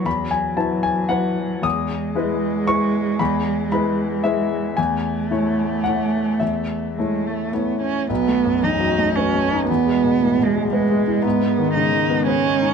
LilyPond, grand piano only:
<<
  \new Staff \with { instrumentName = "Grand piano" } { \time 3/4 \key e \major \tempo 4 = 114 b''8 gis''8 a''8 gis''8 fis''4 | dis'''2 cis'''4 | b''4 b''4 e''4 | gis''2 fis''4 |
e''2 r4 | r2. | r2. | r2. | }
  \new Staff \with { instrumentName = "Grand piano" } { \time 3/4 \key e \major e,4 <fis e' b'>4 <fis e' b'>4 | e,4 <gis e' b'>4 <gis e' b'>4 | e,4 <gis e' b'>4 <gis e' b'>4 | e,4 <a e' cis''>4 <a e' cis''>4 |
e,4 <a e' cis''>4 <a e' cis''>4 | \tuplet 3/2 { b,,8 a8 fis,8 e,8 fis,8 a8 b'8 a8 dis'8 } | \tuplet 3/2 { e,8 gis8 b,8 a,8 b,8 gis8 b'8 gis8 e'8 } | \tuplet 3/2 { gis,8 b8 dis8 cis8 dis8 b8 b'8 b8 dis'8 } | }
>>